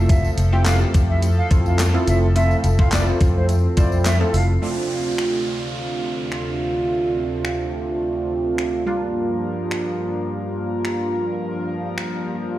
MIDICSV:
0, 0, Header, 1, 8, 480
1, 0, Start_track
1, 0, Tempo, 566038
1, 79, Time_signature, 4, 2, 24, 8
1, 10672, End_track
2, 0, Start_track
2, 0, Title_t, "Flute"
2, 0, Program_c, 0, 73
2, 78, Note_on_c, 0, 76, 102
2, 256, Note_off_c, 0, 76, 0
2, 446, Note_on_c, 0, 79, 85
2, 530, Note_off_c, 0, 79, 0
2, 560, Note_on_c, 0, 77, 88
2, 654, Note_off_c, 0, 77, 0
2, 927, Note_on_c, 0, 76, 96
2, 1010, Note_off_c, 0, 76, 0
2, 1166, Note_on_c, 0, 77, 83
2, 1249, Note_off_c, 0, 77, 0
2, 1408, Note_on_c, 0, 77, 82
2, 1490, Note_off_c, 0, 77, 0
2, 1760, Note_on_c, 0, 76, 89
2, 1853, Note_off_c, 0, 76, 0
2, 1999, Note_on_c, 0, 76, 104
2, 2177, Note_off_c, 0, 76, 0
2, 2366, Note_on_c, 0, 77, 84
2, 2449, Note_off_c, 0, 77, 0
2, 2480, Note_on_c, 0, 74, 84
2, 2574, Note_off_c, 0, 74, 0
2, 2847, Note_on_c, 0, 72, 79
2, 2930, Note_off_c, 0, 72, 0
2, 3200, Note_on_c, 0, 74, 88
2, 3377, Note_off_c, 0, 74, 0
2, 3440, Note_on_c, 0, 76, 77
2, 3534, Note_off_c, 0, 76, 0
2, 3680, Note_on_c, 0, 77, 82
2, 3774, Note_off_c, 0, 77, 0
2, 10672, End_track
3, 0, Start_track
3, 0, Title_t, "Analog polysynth"
3, 0, Program_c, 1, 90
3, 0, Note_on_c, 1, 57, 89
3, 0, Note_on_c, 1, 60, 82
3, 0, Note_on_c, 1, 64, 78
3, 0, Note_on_c, 1, 65, 80
3, 0, Note_on_c, 1, 69, 95
3, 318, Note_off_c, 1, 57, 0
3, 319, Note_off_c, 1, 60, 0
3, 319, Note_off_c, 1, 64, 0
3, 320, Note_off_c, 1, 65, 0
3, 320, Note_off_c, 1, 69, 0
3, 444, Note_on_c, 1, 57, 80
3, 445, Note_on_c, 1, 60, 72
3, 446, Note_on_c, 1, 64, 73
3, 447, Note_on_c, 1, 65, 70
3, 449, Note_on_c, 1, 67, 88
3, 1084, Note_off_c, 1, 57, 0
3, 1084, Note_off_c, 1, 60, 0
3, 1085, Note_off_c, 1, 64, 0
3, 1085, Note_off_c, 1, 65, 0
3, 1086, Note_off_c, 1, 67, 0
3, 1278, Note_on_c, 1, 57, 77
3, 1279, Note_on_c, 1, 60, 71
3, 1280, Note_on_c, 1, 64, 72
3, 1281, Note_on_c, 1, 65, 73
3, 1283, Note_on_c, 1, 69, 85
3, 1556, Note_off_c, 1, 57, 0
3, 1557, Note_off_c, 1, 60, 0
3, 1557, Note_off_c, 1, 64, 0
3, 1558, Note_off_c, 1, 65, 0
3, 1558, Note_off_c, 1, 69, 0
3, 1644, Note_on_c, 1, 57, 78
3, 1645, Note_on_c, 1, 60, 76
3, 1646, Note_on_c, 1, 64, 75
3, 1646, Note_on_c, 1, 65, 71
3, 1648, Note_on_c, 1, 69, 87
3, 1919, Note_off_c, 1, 57, 0
3, 1919, Note_off_c, 1, 60, 0
3, 1920, Note_off_c, 1, 64, 0
3, 1920, Note_off_c, 1, 65, 0
3, 1921, Note_off_c, 1, 69, 0
3, 1997, Note_on_c, 1, 57, 78
3, 1997, Note_on_c, 1, 60, 70
3, 1998, Note_on_c, 1, 64, 70
3, 2000, Note_on_c, 1, 65, 70
3, 2001, Note_on_c, 1, 69, 83
3, 2275, Note_off_c, 1, 57, 0
3, 2276, Note_off_c, 1, 60, 0
3, 2276, Note_off_c, 1, 64, 0
3, 2277, Note_off_c, 1, 65, 0
3, 2278, Note_off_c, 1, 69, 0
3, 2365, Note_on_c, 1, 57, 80
3, 2366, Note_on_c, 1, 60, 73
3, 2367, Note_on_c, 1, 64, 76
3, 2368, Note_on_c, 1, 65, 71
3, 2369, Note_on_c, 1, 69, 84
3, 3004, Note_off_c, 1, 57, 0
3, 3005, Note_off_c, 1, 60, 0
3, 3005, Note_off_c, 1, 64, 0
3, 3006, Note_off_c, 1, 65, 0
3, 3006, Note_off_c, 1, 69, 0
3, 3196, Note_on_c, 1, 57, 78
3, 3197, Note_on_c, 1, 60, 75
3, 3198, Note_on_c, 1, 64, 72
3, 3200, Note_on_c, 1, 65, 69
3, 3201, Note_on_c, 1, 72, 83
3, 3475, Note_off_c, 1, 57, 0
3, 3476, Note_off_c, 1, 60, 0
3, 3476, Note_off_c, 1, 64, 0
3, 3477, Note_off_c, 1, 65, 0
3, 3477, Note_off_c, 1, 72, 0
3, 3563, Note_on_c, 1, 57, 77
3, 3564, Note_on_c, 1, 60, 73
3, 3565, Note_on_c, 1, 64, 74
3, 3567, Note_on_c, 1, 65, 72
3, 3567, Note_on_c, 1, 69, 86
3, 3838, Note_off_c, 1, 57, 0
3, 3838, Note_off_c, 1, 60, 0
3, 3839, Note_off_c, 1, 64, 0
3, 3840, Note_off_c, 1, 65, 0
3, 3840, Note_off_c, 1, 69, 0
3, 3915, Note_on_c, 1, 57, 77
3, 3918, Note_on_c, 1, 60, 70
3, 3921, Note_on_c, 1, 62, 70
3, 3925, Note_on_c, 1, 65, 81
3, 7483, Note_off_c, 1, 57, 0
3, 7485, Note_off_c, 1, 60, 0
3, 7486, Note_off_c, 1, 62, 0
3, 7488, Note_off_c, 1, 65, 0
3, 7514, Note_on_c, 1, 55, 82
3, 7517, Note_on_c, 1, 58, 77
3, 7520, Note_on_c, 1, 62, 74
3, 7523, Note_on_c, 1, 65, 93
3, 10672, Note_off_c, 1, 55, 0
3, 10672, Note_off_c, 1, 58, 0
3, 10672, Note_off_c, 1, 62, 0
3, 10672, Note_off_c, 1, 65, 0
3, 10672, End_track
4, 0, Start_track
4, 0, Title_t, "Analog synth pad"
4, 0, Program_c, 2, 89
4, 0, Note_on_c, 2, 53, 84
4, 0, Note_on_c, 2, 69, 89
4, 0, Note_on_c, 2, 76, 90
4, 1726, Note_off_c, 2, 76, 0
4, 1760, Note_on_c, 2, 60, 90
4, 3885, Note_off_c, 2, 53, 0
4, 3885, Note_off_c, 2, 69, 0
4, 3898, Note_off_c, 2, 60, 0
4, 3918, Note_on_c, 2, 48, 71
4, 3919, Note_on_c, 2, 38, 82
4, 3919, Note_on_c, 2, 65, 90
4, 7485, Note_off_c, 2, 38, 0
4, 7485, Note_off_c, 2, 48, 0
4, 7485, Note_off_c, 2, 65, 0
4, 7520, Note_on_c, 2, 43, 76
4, 7520, Note_on_c, 2, 53, 71
4, 7520, Note_on_c, 2, 70, 84
4, 9420, Note_off_c, 2, 53, 0
4, 9441, Note_on_c, 2, 53, 69
4, 10672, Note_off_c, 2, 43, 0
4, 10672, Note_off_c, 2, 53, 0
4, 10672, Note_off_c, 2, 70, 0
4, 10672, End_track
5, 0, Start_track
5, 0, Title_t, "Fingered electric bass"
5, 0, Program_c, 3, 33
5, 0, Note_on_c, 3, 29, 93
5, 228, Note_off_c, 3, 29, 0
5, 318, Note_on_c, 3, 29, 101
5, 708, Note_off_c, 3, 29, 0
5, 802, Note_on_c, 3, 41, 100
5, 1190, Note_off_c, 3, 41, 0
5, 1281, Note_on_c, 3, 41, 106
5, 1669, Note_off_c, 3, 41, 0
5, 1760, Note_on_c, 3, 29, 95
5, 2149, Note_off_c, 3, 29, 0
5, 2239, Note_on_c, 3, 29, 95
5, 2628, Note_off_c, 3, 29, 0
5, 2721, Note_on_c, 3, 41, 93
5, 3110, Note_off_c, 3, 41, 0
5, 3200, Note_on_c, 3, 41, 103
5, 3589, Note_off_c, 3, 41, 0
5, 3679, Note_on_c, 3, 29, 93
5, 3873, Note_off_c, 3, 29, 0
5, 10672, End_track
6, 0, Start_track
6, 0, Title_t, "Downlifter"
6, 0, Program_c, 4, 103
6, 3919, Note_on_c, 4, 60, 77
6, 7759, Note_off_c, 4, 60, 0
6, 10672, End_track
7, 0, Start_track
7, 0, Title_t, "Swell"
7, 0, Program_c, 5, 103
7, 7759, Note_on_c, 5, 60, 80
7, 10672, Note_off_c, 5, 60, 0
7, 10672, End_track
8, 0, Start_track
8, 0, Title_t, "Drums"
8, 79, Note_on_c, 9, 36, 127
8, 79, Note_on_c, 9, 42, 91
8, 80, Note_on_c, 9, 54, 51
8, 164, Note_off_c, 9, 36, 0
8, 164, Note_off_c, 9, 42, 0
8, 165, Note_off_c, 9, 54, 0
8, 208, Note_on_c, 9, 54, 34
8, 293, Note_off_c, 9, 54, 0
8, 319, Note_on_c, 9, 42, 77
8, 322, Note_on_c, 9, 54, 55
8, 403, Note_off_c, 9, 42, 0
8, 407, Note_off_c, 9, 54, 0
8, 557, Note_on_c, 9, 39, 127
8, 558, Note_on_c, 9, 42, 104
8, 559, Note_on_c, 9, 54, 85
8, 563, Note_on_c, 9, 38, 106
8, 641, Note_off_c, 9, 39, 0
8, 643, Note_off_c, 9, 42, 0
8, 644, Note_off_c, 9, 54, 0
8, 648, Note_off_c, 9, 38, 0
8, 799, Note_on_c, 9, 42, 76
8, 800, Note_on_c, 9, 54, 53
8, 802, Note_on_c, 9, 36, 89
8, 884, Note_off_c, 9, 42, 0
8, 885, Note_off_c, 9, 54, 0
8, 887, Note_off_c, 9, 36, 0
8, 1038, Note_on_c, 9, 42, 68
8, 1042, Note_on_c, 9, 54, 63
8, 1123, Note_off_c, 9, 42, 0
8, 1126, Note_off_c, 9, 54, 0
8, 1278, Note_on_c, 9, 42, 71
8, 1281, Note_on_c, 9, 36, 99
8, 1282, Note_on_c, 9, 54, 46
8, 1363, Note_off_c, 9, 42, 0
8, 1366, Note_off_c, 9, 36, 0
8, 1366, Note_off_c, 9, 54, 0
8, 1407, Note_on_c, 9, 54, 33
8, 1492, Note_off_c, 9, 54, 0
8, 1519, Note_on_c, 9, 39, 111
8, 1519, Note_on_c, 9, 42, 87
8, 1520, Note_on_c, 9, 54, 94
8, 1525, Note_on_c, 9, 38, 90
8, 1603, Note_off_c, 9, 39, 0
8, 1603, Note_off_c, 9, 42, 0
8, 1605, Note_off_c, 9, 54, 0
8, 1610, Note_off_c, 9, 38, 0
8, 1760, Note_on_c, 9, 42, 80
8, 1761, Note_on_c, 9, 54, 50
8, 1844, Note_off_c, 9, 42, 0
8, 1846, Note_off_c, 9, 54, 0
8, 1999, Note_on_c, 9, 42, 95
8, 2001, Note_on_c, 9, 54, 53
8, 2084, Note_off_c, 9, 42, 0
8, 2086, Note_off_c, 9, 54, 0
8, 2128, Note_on_c, 9, 54, 34
8, 2213, Note_off_c, 9, 54, 0
8, 2237, Note_on_c, 9, 42, 74
8, 2241, Note_on_c, 9, 54, 53
8, 2322, Note_off_c, 9, 42, 0
8, 2326, Note_off_c, 9, 54, 0
8, 2365, Note_on_c, 9, 36, 95
8, 2450, Note_off_c, 9, 36, 0
8, 2476, Note_on_c, 9, 39, 127
8, 2478, Note_on_c, 9, 42, 97
8, 2480, Note_on_c, 9, 54, 84
8, 2483, Note_on_c, 9, 38, 102
8, 2561, Note_off_c, 9, 39, 0
8, 2562, Note_off_c, 9, 42, 0
8, 2565, Note_off_c, 9, 54, 0
8, 2568, Note_off_c, 9, 38, 0
8, 2719, Note_on_c, 9, 42, 76
8, 2720, Note_on_c, 9, 54, 51
8, 2722, Note_on_c, 9, 36, 91
8, 2803, Note_off_c, 9, 42, 0
8, 2805, Note_off_c, 9, 54, 0
8, 2806, Note_off_c, 9, 36, 0
8, 2958, Note_on_c, 9, 42, 67
8, 2962, Note_on_c, 9, 54, 60
8, 3043, Note_off_c, 9, 42, 0
8, 3046, Note_off_c, 9, 54, 0
8, 3197, Note_on_c, 9, 42, 74
8, 3199, Note_on_c, 9, 54, 47
8, 3200, Note_on_c, 9, 36, 94
8, 3282, Note_off_c, 9, 42, 0
8, 3284, Note_off_c, 9, 54, 0
8, 3285, Note_off_c, 9, 36, 0
8, 3325, Note_on_c, 9, 54, 33
8, 3410, Note_off_c, 9, 54, 0
8, 3438, Note_on_c, 9, 39, 112
8, 3438, Note_on_c, 9, 42, 85
8, 3439, Note_on_c, 9, 54, 93
8, 3444, Note_on_c, 9, 38, 87
8, 3522, Note_off_c, 9, 39, 0
8, 3523, Note_off_c, 9, 42, 0
8, 3524, Note_off_c, 9, 54, 0
8, 3529, Note_off_c, 9, 38, 0
8, 3679, Note_on_c, 9, 54, 51
8, 3680, Note_on_c, 9, 46, 82
8, 3764, Note_off_c, 9, 54, 0
8, 3765, Note_off_c, 9, 46, 0
8, 4396, Note_on_c, 9, 26, 107
8, 4481, Note_off_c, 9, 26, 0
8, 5357, Note_on_c, 9, 26, 92
8, 5442, Note_off_c, 9, 26, 0
8, 6315, Note_on_c, 9, 26, 111
8, 6400, Note_off_c, 9, 26, 0
8, 7279, Note_on_c, 9, 26, 99
8, 7363, Note_off_c, 9, 26, 0
8, 8236, Note_on_c, 9, 26, 113
8, 8321, Note_off_c, 9, 26, 0
8, 9198, Note_on_c, 9, 26, 103
8, 9283, Note_off_c, 9, 26, 0
8, 10156, Note_on_c, 9, 26, 113
8, 10241, Note_off_c, 9, 26, 0
8, 10672, End_track
0, 0, End_of_file